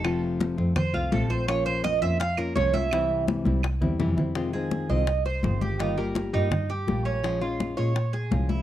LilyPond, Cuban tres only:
\new Staff \with { instrumentName = "Cuban tres" } { \time 4/4 \key f \minor \tempo 4 = 167 a'8 r4. c''8 f'8 a'8 c''8 | des''8 c''8 ees''8 e''8 f''8 bes'8 des''8 e''8~ | e''4 r2. | r8 aes'4 ees''4 c''4 g'8 |
ees'8 bes'4 ees'4 g'4 des'8~ | des'8 f'4 des''4 aes'4 e'8 | }